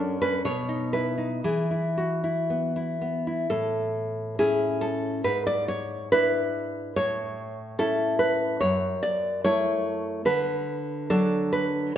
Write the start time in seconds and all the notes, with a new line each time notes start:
Already playing: F#2 C#4 A4
0.00 D4
0.22 C#4 B4
0.45 B2 C#5
0.69 D#4
0.93 E4 B4
1.18 D#4
1.44 E3 G#4
1.71 E4
1.97 F#4
2.24 E4
2.50 B3
2.76 E4
3.01 B3
3.27 E4
3.50 A2 A4
4.39 C#4 E4 G#4
4.81 A4
5.24 G#2 B4
5.47 D5
5.68 C#5
6.12 D4 E4 B4
6.96 A2 C#5
7.79 C#4 E4 A4
8.19 B4
8.61 F#2 C#5
9.03 D5
9.44 A3 E4 C#5
10.25 D3 B4
11.10 F#3 D4 A4
11.53 B4